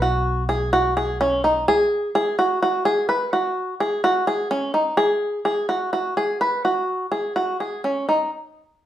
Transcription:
Already playing: B1
0.02 F#4
0.49 G#4
0.73 F#4
0.97 G#4
1.21 C#4
1.44 D#4
1.68 G#4
2.15 G#4
2.39 F#4
2.62 F#4
2.85 G#4
3.09 B4
3.33 F#4
3.80 G#4
4.04 F#4
4.27 G#4
4.51 C#4
4.74 D#4
4.97 G#4
5.45 G#4
5.69 F#4
5.93 F#4
6.17 G#4
6.41 B4
6.65 F#4
7.12 G#4
7.36 F#4
7.60 G#4
7.84 C#4
8.09 D#4

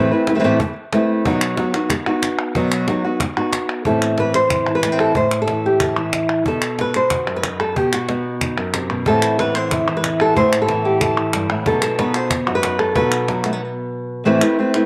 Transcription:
Already playing: A2 E3 A3 C4 E4 B4
0.11 A3 C4 E4 B4, cajon slap
0.27 A3 C4 E4 B4, cajon slap
0.35 E3 A3 C4 E4 B4
0.39 E3 A3 C4 E4 B4
0.44 A2 E3 A3 C4 E4 B4, cajon slap
0.60 muted nylon-string guitar stroke, cajon bass
0.76 cajon slap
0.93 A3 C4 E4 B4, cajon slap
1.25 B2 F#3 B3 D#4 F#4, cajon bass
1.41 clap
1.57 F#3 B3 D#4 F#4, cajon slap
1.74 B3 D#4 F#4, cajon slap, clap
1.90 muted nylon-string guitar stroke, cajon bass, clap
2.06 B3 D#4 F#4, clap
2.23 cajon slap, clap
2.55 B2 F#3 B3 D#4 F#4, cajon bass
2.72 clap
2.88 F#3 B3 D#4 F#4, cajon slap
3.04 B3 D#4 F#4, cajon slap
3.20 muted nylon-string guitar stroke, cajon bass, clap
3.37 B3 D#4 F#4, clap
3.53 cajon slap, clap
3.69 clap
3.85 A2 E3 C4 E4 A4, cajon bass
4.02 clap
4.18 E3 B4, cajon slap
4.34 C5, clap
4.50 E4, cajon bass, clap
4.66 E3 E4, clap
4.75 B4
4.83 A3, cajon slap, clap
4.92 C4
4.99 A4, clap
5.15 A2 C5, cajon bass
5.31 clap
5.42 A4
5.48 E3, cajon slap
5.64 G4, cajon slap
5.80 A4, cajon bass, clap
5.97 E3 E4
6.13 cajon slap, clap
6.29 clap
6.46 B2 B3 D#4 A4, cajon bass
6.62 clap
6.79 B4, cajon slap
6.94 C5, cajon slap, clap
7.10 F#4, cajon bass, clap
7.27 F#2 F#4, cajon slap, clap
7.36 B4
7.43 D#4, cajon slap, clap
7.60 A4, clap
7.76 B2 G4, cajon bass
7.93 F#4, cajon slap, clap
8.09 B3 D#4, cajon slap
8.41 D#4, cajon bass, clap
8.58 F#2, clap
8.74 C3, cajon slap, clap
8.90 B2, clap
9.05 A2 E3 B3 C4 E4 A4, cajon bass
9.22 B3 C4 E4, clap
9.38 E3 B3 C4 E4 B4, cajon slap
9.54 B3 C4 E4 C5, clap
9.71 E4, muted nylon-string guitar stroke, cajon bass, clap
9.88 E3 E4, clap
9.97 B4
10.04 cajon slap, clap
10.19 B3 C4 E4 A4, clap
10.36 A2 E3 B3 C4 E4 C5, cajon bass
10.52 B3 C4 E4, clap
10.62 A4
10.68 E3 B3 C4 E4, cajon slap
10.85 B3 C4 E4 G4, cajon slap
11.01 A4, muted nylon-string guitar stroke, cajon bass, clap
11.17 E3, clap
11.33 G2, cajon slap, clap
11.49 A2 B3 C4 E4, clap
11.66 B2 F#3 B3 D#4 F#4 A4, cajon bass
11.82 A4, clap
11.98 F#3 B3 D#4 F#4 B4, cajon slap
12.14 B3 D#4 F#4 C5, clap
12.30 muted nylon-string guitar stroke, cajon bass, clap
12.46 F#2 B3 D#4 F#4, cajon slap, clap
12.55 B4
12.62 B3 D#4 F#4, cajon slap, clap
12.79 A4
12.95 B2 F#3 B3 D#4 F#4 B4, cajon bass
13.12 clap
13.27 F#3 B3 D#4 F#4, cajon slap
13.44 A3 B3 D#4 F#4, cajon slap, clap
13.53 B3
14.25 A2 E3 A3 C4 E4 B4
14.41 A3 C4 E4 B4, clap
14.59 A3 C4 E4 B4
14.74 A3 C4 E4 B4, clap

